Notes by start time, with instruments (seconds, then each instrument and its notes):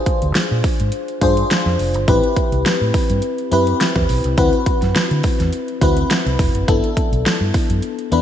Already playing: fm electric piano D4 F4 G#4 C5
0.06 kick, closed hi-hat
0.22 fingered electric bass D2, closed hi-hat
0.35 muted fingered electric bass stroke, snare, closed hi-hat
0.52 fingered electric bass A#2
0.64 kick, open hi-hat
0.80 fingered electric bass G#2, closed hi-hat
0.92 closed hi-hat
1.08 closed hi-hat
1.21 fingered electric bass G2, fm electric piano D4 F4 G#4 C5, kick, closed hi-hat
1.37 closed hi-hat
1.51 snare, closed hi-hat
1.66 fingered electric bass F2, snare
1.79 fingered electric bass F1, open hi-hat
1.94 fingered electric bass G1, closed hi-hat
2.08 fingered electric bass A1, fm electric piano C4 E4 G4 B4, kick, closed hi-hat
2.23 closed hi-hat
2.37 kick, closed hi-hat
2.52 fingered electric bass C2, closed hi-hat
2.66 muted fingered electric bass stroke, snare, closed hi-hat
2.81 fingered electric bass A2
2.94 kick, open hi-hat
3.10 fingered electric bass G2, closed hi-hat
3.22 closed hi-hat
3.38 closed hi-hat
3.51 fingered electric bass F#2, fm electric piano C4 E4 G4 B4, closed hi-hat
3.67 closed hi-hat
3.81 snare, closed hi-hat
3.96 fingered electric bass E2, kick, snare
4.09 fingered electric bass B1, open hi-hat
4.24 fingered electric bass C2, closed hi-hat
4.38 fingered electric bass D2, fm electric piano C4 E4 F#4 B4, kick, closed hi-hat
4.53 closed hi-hat
4.66 kick, closed hi-hat
4.82 fingered electric bass F#2, snare, closed hi-hat
4.96 snare, closed hi-hat
5.11 fingered electric bass D3, closed hi-hat
5.23 kick, open hi-hat
5.40 fingered electric bass E2, snare, closed hi-hat
5.53 closed hi-hat
5.68 closed hi-hat
5.81 fingered electric bass D2, fm electric piano C4 E4 F#4 B4, kick, closed hi-hat
5.97 closed hi-hat
6.10 snare, closed hi-hat
6.26 fingered electric bass C2, snare, closed hi-hat
6.39 fingered electric bass E1, kick, open hi-hat
6.55 fingered electric bass F#1, closed hi-hat
6.68 fingered electric bass G1, fm electric piano B3 D4 E4 A4, kick, closed hi-hat
6.84 closed hi-hat
6.97 kick, closed hi-hat
7.12 fingered electric bass B1, closed hi-hat
7.26 muted fingered electric bass stroke, snare, closed hi-hat
7.41 fingered electric bass G2
7.54 kick, open hi-hat
7.70 fingered electric bass F#2, closed hi-hat
7.82 closed hi-hat
7.99 closed hi-hat
8.11 fingered electric bass E2, fm electric piano B3 D4 E4 B4, closed hi-hat